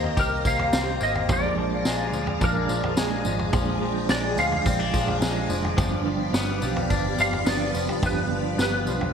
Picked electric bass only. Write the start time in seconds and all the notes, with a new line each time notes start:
Already playing: D#2
0.17 C2
0.45 C2
0.73 C2
1.01 G#1
1.29 A#1
1.57 A#1
1.86 A#1
2.14 D2
2.41 A#1
2.69 A#1
2.98 A#1
3.25 G#1
3.53 A#1
3.81 A#1
4.09 A#1
4.37 D2
4.65 A#1
4.93 A#1
5.21 A#1
5.49 F1
5.78 G1
6.06 G1
6.33 G1
6.62 B1
6.90 G1
7.18 G1
7.47 G1
7.74 F1
8.03 G1
8.31 G1
8.58 G1
8.87 B1